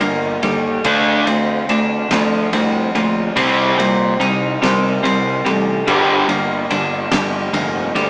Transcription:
0.00 0.36 G1 medium
0.00 0.43 G2 medium
0.00 0.38 G2 medium
0.00 0.39 D3 medium
0.00 0.42 G3 medium
0.00 0.85 A#3 medium
0.00 0.85 D4 medium
0.00 0.43 A#4 medium
0.00 ride medium
0.43 0.78 D#2 medium
0.43 0.81 G2 medium
0.43 0.81 D3 medium
0.43 0.85 G3 medium
0.43 0.85 A4 medium
0.43 ride medium
0.84 1.19 D2 medium
0.84 2.95 D3 medium
0.84 1.25 D3 medium
0.84 1.25 A3 medium
0.84 1.25 D4 medium
0.84 1.69 F5 medium
0.84 kick loud
0.84 ride medium
1.26 1.62 D2 medium
1.26 1.64 D3 medium
1.26 1.64 A3 medium
1.26 2.52 C4 medium
1.26 ride medium
1.69 2.04 D2 medium
1.69 2.07 D3 medium
1.69 2.07 A3 medium
1.69 3.37 D4 medium
1.69 ride medium
2.11 2.46 D2 medium
2.11 2.49 D3 medium
2.11 2.94 F3 medium
2.11 2.49 A3 medium
2.11 snare loud
2.11 ride medium
2.52 2.87 C2 medium
2.52 2.91 D3 medium
2.52 2.91 A3 medium
2.52 3.37 C4 medium
2.52 ride medium
2.94 3.29 A#1 medium
2.94 3.32 D3 medium
2.94 3.37 F3 medium
2.94 3.33 A3 medium
2.94 3.36 D5 medium
2.94 ride medium
3.36 3.71 C2 medium
3.36 3.75 C3 medium
3.36 5.46 C3 medium
3.36 3.76 G3 medium
3.36 3.76 C4 medium
3.36 4.20 C5 medium
3.36 kick medium
3.36 ride medium
3.78 4.12 A#2 medium
3.78 4.16 C3 medium
3.78 4.16 G3 medium
3.78 5.02 C4 medium
3.78 ride medium
4.20 4.54 C2 medium
4.20 4.58 C3 medium
4.20 4.58 G3 medium
4.20 5.87 D#4 medium
4.20 ride medium
4.62 5.00 C3 medium
4.62 4.97 C3 medium
4.62 5.44 G3 medium
4.62 5.00 G3 medium
4.62 5.45 A#4 medium
4.62 kick medium
4.62 snare loud
4.62 ride medium
5.03 5.38 C2 medium
5.03 5.41 C3 medium
5.03 5.41 G3 medium
5.03 5.87 C4 medium
5.03 ride medium
5.45 5.80 A1 medium
5.45 5.83 C3 medium
5.45 7.12 G3 medium
5.45 5.83 G3 medium
5.45 5.88 A4 medium
5.45 ride medium
5.86 6.22 G1 medium
5.86 7.95 G2 medium
5.86 6.27 G2 medium
5.86 6.27 D3 medium
5.86 6.27 G3 medium
5.86 6.71 G5 medium
5.86 kick medium
5.86 crash medium
6.28 6.63 G1 medium
6.28 6.66 G2 medium
6.28 6.66 D3 medium
6.28 7.52 A#3 medium
6.28 ride medium
6.70 7.05 G1 medium
6.70 7.08 G2 medium
6.70 7.09 D3 medium
6.70 8.10 D4 medium
6.70 ride medium
7.12 7.47 G1 medium
7.12 7.50 G2 medium
7.12 7.50 D3 medium
7.12 7.94 G3 medium
7.12 snare loud
7.12 ride medium
7.53 7.88 F1 medium
7.53 7.91 G2 medium
7.53 7.91 D3 medium
7.53 8.10 A#3 medium
7.53 ride medium
7.95 8.10 D2 medium
7.95 8.10 G2 medium
7.95 8.10 D3 medium
7.95 8.10 G3 medium
7.95 8.10 D5 medium
7.95 ride medium

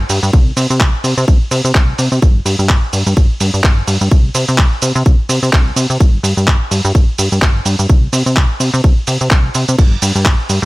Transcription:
0.09 0.20 G2 medium
0.09 open hi-hat loud
0.09 shaker medium
0.23 0.31 G2 medium
0.23 shaker soft
0.33 0.52 C2 loud
0.33 kick loud
0.33 shaker soft
0.57 0.67 C3 medium
0.57 open hi-hat loud
0.57 shaker medium
0.70 0.82 C3 medium
0.70 shaker soft
0.80 0.91 C2 loud
0.80 kick loud
0.80 clap loud
0.80 shaker soft
1.04 1.14 C3 medium
1.04 open hi-hat loud
1.04 shaker medium
1.18 1.25 C3 loud
1.18 shaker soft
1.28 1.38 C2 medium
1.28 kick loud
1.28 shaker soft
1.51 1.62 C3 medium
1.51 open hi-hat loud
1.51 shaker medium
1.65 1.72 C3 medium
1.65 shaker soft
1.75 1.94 C2 medium
1.75 kick loud
1.75 clap loud
1.75 shaker soft
1.98 2.09 C3 medium
1.98 open hi-hat loud
1.98 shaker medium
2.12 2.20 C3 medium
2.12 shaker soft
2.22 2.41 G1 loud
2.22 kick loud
2.22 shaker soft
2.46 2.56 G2 medium
2.46 open hi-hat loud
2.46 shaker medium
2.59 2.71 G2 medium
2.59 shaker soft
2.69 2.80 G1 loud
2.69 kick loud
2.69 clap loud
2.69 shaker soft
2.93 3.03 G2 medium
2.93 open hi-hat loud
2.93 shaker medium
3.06 3.14 G2 loud
3.06 shaker soft
3.17 3.27 G1 medium
3.17 kick loud
3.17 shaker soft
3.40 3.51 G2 medium
3.40 open hi-hat loud
3.40 shaker medium
3.54 3.62 G2 medium
3.54 shaker soft
3.64 3.83 G1 medium
3.64 kick loud
3.64 clap loud
3.64 shaker soft
3.88 3.98 G2 medium
3.88 open hi-hat loud
3.88 shaker medium
4.01 4.09 G2 medium
4.01 shaker soft
4.11 4.30 C2 loud
4.11 kick loud
4.11 shaker soft
4.35 4.45 C3 medium
4.35 open hi-hat loud
4.35 shaker medium
4.48 4.60 C3 medium
4.48 shaker soft
4.58 4.69 C2 loud
4.58 kick loud
4.58 clap loud
4.58 shaker soft
4.82 4.92 C3 medium
4.82 open hi-hat loud
4.82 shaker medium
4.95 5.03 C3 loud
4.95 shaker soft
5.06 5.16 C2 medium
5.06 kick loud
5.06 shaker soft
5.29 5.40 C3 medium
5.29 open hi-hat loud
5.29 shaker medium
5.43 5.51 C3 medium
5.43 shaker soft
5.53 5.72 C2 medium
5.53 kick loud
5.53 clap loud
5.53 shaker soft
5.76 5.87 C3 medium
5.76 open hi-hat loud
5.76 shaker medium
5.90 5.98 C3 medium
5.90 shaker soft
6.00 6.19 G1 loud
6.00 kick loud
6.00 shaker soft
6.23 6.34 G2 medium
6.23 open hi-hat loud
6.23 shaker medium
6.37 6.49 G2 medium
6.37 shaker soft
6.48 6.58 G1 loud
6.48 kick loud
6.48 clap loud
6.48 shaker soft
6.71 6.81 G2 medium
6.71 open hi-hat loud
6.71 shaker medium
6.85 6.92 G2 loud
6.85 shaker soft
6.95 7.05 G1 medium
6.95 kick loud
6.95 shaker soft
7.18 7.29 G2 medium
7.18 open hi-hat loud
7.18 shaker medium
7.32 7.40 G2 medium
7.32 shaker soft
7.42 7.61 G1 medium
7.42 kick loud
7.42 clap loud
7.42 shaker soft
7.66 7.76 G2 medium
7.66 open hi-hat loud
7.66 shaker medium
7.79 7.87 G2 medium
7.79 shaker soft
7.89 8.08 C2 loud
7.89 kick loud
7.89 shaker soft
8.13 8.23 C3 medium
8.13 open hi-hat loud
8.13 shaker medium
8.26 8.38 C3 medium
8.26 shaker soft
8.37 8.47 C2 loud
8.37 kick loud
8.37 clap loud
8.37 shaker soft
8.60 8.70 C3 medium
8.60 open hi-hat loud
8.60 shaker medium
8.74 8.81 C3 loud
8.74 shaker soft
8.84 8.94 C2 medium
8.84 kick loud
8.84 shaker soft
9.07 9.18 C3 medium
9.07 open hi-hat loud
9.07 shaker medium
9.21 9.29 C3 medium
9.21 open hi-hat medium
9.21 shaker soft
9.31 9.50 C2 medium
9.31 kick loud
9.31 clap loud
9.31 shaker soft
9.55 9.65 C3 medium
9.55 open hi-hat loud
9.55 shaker medium
9.68 9.76 C3 medium
9.68 shaker soft
9.78 9.97 G1 loud
9.78 kick loud
9.78 ride medium
9.78 crash medium
9.78 shaker soft
10.02 10.12 G2 medium
10.02 open hi-hat loud
10.02 shaker medium
10.15 10.27 G2 medium
10.15 shaker soft
10.26 10.36 G1 loud
10.26 kick loud
10.26 clap loud
10.26 ride medium
10.26 shaker soft
10.49 10.59 G2 medium
10.49 open hi-hat loud
10.49 shaker medium

